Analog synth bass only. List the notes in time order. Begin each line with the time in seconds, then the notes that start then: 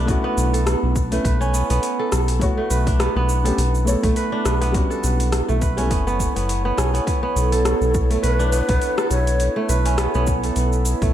Already playing: B1
0.37 B1
0.83 B1
1.25 B1
1.70 B1
2.13 B1
2.71 B1
3.16 B1
3.58 B1
4.04 B1
4.45 B1
5.04 B1
5.49 B1
5.91 F#1
6.36 F#1
6.78 B1
7.36 B1
7.81 B1
8.23 B1
8.69 B1
9.10 B1
9.69 B1
10.15 B1
10.56 B1
11.02 B1